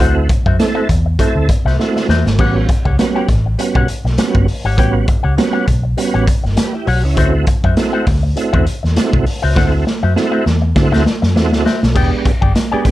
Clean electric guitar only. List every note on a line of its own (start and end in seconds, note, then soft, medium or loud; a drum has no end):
0.00 0.15 F#4 medium
0.00 0.16 C5 loud
0.00 0.15 F#5 loud
0.16 muted clean electric guitar stroke soft
0.29 muted clean electric guitar stroke soft
0.46 0.57 F#4 soft
0.46 0.56 C5 medium
0.46 0.56 E5 medium
0.75 0.87 F#4 medium
0.75 0.88 C5 medium
0.75 0.88 E5 loud
1.06 muted clean electric guitar stroke soft
1.19 1.35 F#4 medium
1.19 1.35 C5 medium
1.19 1.36 E5 medium
1.50 muted clean electric guitar stroke soft
1.65 1.76 F#4 medium
1.65 1.76 C5 medium
1.65 1.75 E5 medium
1.79 muted clean electric guitar stroke soft
1.96 muted clean electric guitar stroke soft
2.09 2.25 F#4 medium
2.09 2.25 C5 medium
2.09 2.25 E5 medium
2.39 2.55 G4 medium
2.39 2.55 C#5 medium
2.39 2.54 F#5 loud
2.69 muted clean electric guitar stroke soft
2.85 2.96 G4 medium
2.85 2.96 C#5 medium
2.85 2.95 F#5 medium
2.98 muted clean electric guitar stroke soft
3.15 3.27 G4 medium
3.15 3.28 C#5 medium
3.15 3.28 G5 medium
3.46 muted clean electric guitar stroke soft
3.59 muted clean electric guitar stroke soft
3.75 3.88 G4 medium
3.75 3.88 C#5 medium
3.75 3.88 F#5 medium
4.05 muted clean electric guitar stroke medium
4.18 muted clean electric guitar stroke medium
4.35 muted clean electric guitar stroke soft
4.65 4.76 G4 medium
4.65 4.77 C#5 medium
4.65 4.77 F#5 medium
4.77 4.94 G4 loud
4.77 4.94 C#5 loud
4.77 4.94 G5 loud
4.94 muted clean electric guitar stroke soft
5.07 muted clean electric guitar stroke soft
5.23 5.35 G4 soft
5.23 5.34 C#5 medium
5.23 5.34 F#5 medium
5.37 muted clean electric guitar stroke soft
5.53 5.66 G4 medium
5.53 5.66 C#5 medium
5.53 5.66 F#5 medium
5.67 muted clean electric guitar stroke soft
5.83 muted clean electric guitar stroke soft
5.97 muted clean electric guitar stroke soft
6.14 6.26 G4 medium
6.14 6.27 C#5 medium
6.14 6.27 F#5 medium
6.27 muted clean electric guitar stroke soft
6.44 muted clean electric guitar stroke medium
6.56 muted clean electric guitar stroke soft
6.73 muted clean electric guitar stroke soft
6.87 7.03 G4 medium
6.87 7.03 C#5 medium
6.87 7.02 F#5 medium
7.04 muted clean electric guitar stroke soft
7.17 7.33 F#4 loud
7.17 7.33 C5 loud
7.17 7.32 E5 loud
7.34 muted clean electric guitar stroke medium
7.47 muted clean electric guitar stroke soft
7.64 7.75 F#4 soft
7.64 7.74 C5 medium
7.64 7.74 E5 medium
7.93 8.05 F#4 medium
7.93 8.06 C5 medium
7.93 8.06 F#5 medium
8.07 muted clean electric guitar stroke soft
8.23 muted clean electric guitar stroke soft
8.36 muted clean electric guitar stroke soft
8.53 8.65 F#4 medium
8.53 8.66 C5 medium
8.53 8.66 E5 medium
8.66 muted clean electric guitar stroke soft
8.83 muted clean electric guitar stroke soft
8.96 muted clean electric guitar stroke soft
9.13 muted clean electric guitar stroke soft
9.42 9.54 F#4 medium
9.42 9.55 C5 medium
9.42 9.55 E5 medium
9.55 9.72 F#4 loud
9.55 9.72 C5 medium
9.55 9.72 F#5 loud
9.72 muted clean electric guitar stroke soft
9.86 muted clean electric guitar stroke soft
10.03 10.14 F#4 medium
10.03 10.13 C5 medium
10.03 10.13 E5 medium
10.15 muted clean electric guitar stroke soft
10.32 10.44 F#4 medium
10.32 10.45 C5 medium
10.32 10.45 E5 medium
10.46 muted clean electric guitar stroke soft
10.62 muted clean electric guitar stroke soft
10.75 muted clean electric guitar stroke soft
10.92 11.05 F#4 medium
10.92 11.05 C5 medium
10.92 11.05 E5 medium
11.06 muted clean electric guitar stroke soft
11.22 muted clean electric guitar stroke medium
11.35 muted clean electric guitar stroke soft
11.52 muted clean electric guitar stroke soft
11.65 11.81 F#4 medium
11.65 11.82 C5 medium
11.65 11.81 E5 medium
11.82 muted clean electric guitar stroke soft
11.95 12.11 G#4 medium
11.95 12.11 D5 loud
11.95 12.10 G5 loud
12.12 muted clean electric guitar stroke soft
12.25 muted clean electric guitar stroke soft
12.41 12.52 G#4 medium
12.41 12.52 D5 medium
12.41 12.51 G5 medium
12.72 12.84 G#4 medium
12.72 12.85 D5 medium
12.72 12.84 G#5 medium
12.85 muted clean electric guitar stroke soft